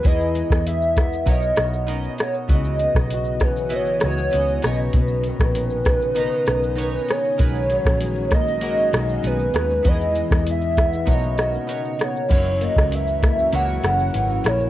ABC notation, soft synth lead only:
X:1
M:4/4
L:1/8
Q:1/4=98
K:B
V:1 name="Soft synth lead"
d2 e2 d3 c | d3 B c c2 d | B6- B c- | c3 d3 B2 |
d2 e2 d3 c | c d e2 f3 c |]